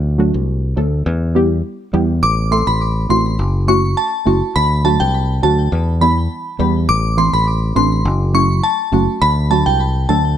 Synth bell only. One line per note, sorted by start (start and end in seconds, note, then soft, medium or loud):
2.23 2.35 D6 loud
2.52 2.64 C6 medium
2.67 2.78 B5 medium
3.10 3.22 C6 medium
3.68 3.80 C#6 medium
3.97 4.39 A5 medium
4.56 4.68 B5 loud
4.85 4.97 A5 medium
5.00 5.11 G5 medium
5.43 5.55 A5 medium
6.01 6.13 B5 medium
6.89 7.01 D6 loud
7.18 7.30 C6 medium
7.34 7.44 B5 medium
7.76 7.88 C6 medium
8.35 8.47 C#6 medium
8.63 9.05 A5 medium
9.22 9.34 B5 loud
9.51 9.63 A5 medium
9.66 9.77 G5 medium
10.09 10.21 A5 medium